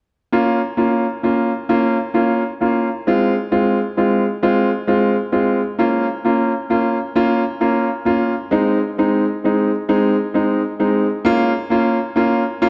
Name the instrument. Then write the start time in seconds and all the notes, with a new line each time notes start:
grand piano
0.32 A#3 C#4 F4
0.77 A#3 C#4 F4
1.23 A#3 C#4 F4
1.69 A#3 C#4 F4
2.14 A#3 C#4 F4
2.61 A#3 C#4 F4
3.07 G#3 C4 F4
3.52 G#3 C4 F4
3.97 G#3 C4 F4
4.42 G#3 C4 F4
4.87 G#3 C4 F4
5.32 G#3 C4 F4
5.79 A#3 C#4 F4
6.25 A#3 C#4 F4
6.70 A#3 C#4 F4
7.15 A#3 C#4 F4
7.60 A#3 C#4 F4
8.05 A#3 C#4 F4
8.51 G#3 C4 D#4
8.98 G#3 C4 D#4
9.44 G#3 C4 D#4
9.89 G#3 C4 D#4
10.34 G#3 C4 D#4
10.80 G#3 C4 D#4
11.25 A#3 C#4 F4
11.70 A#3 C#4 F4
12.16 A#3 C#4 F4
12.62 A#3 C#4 F4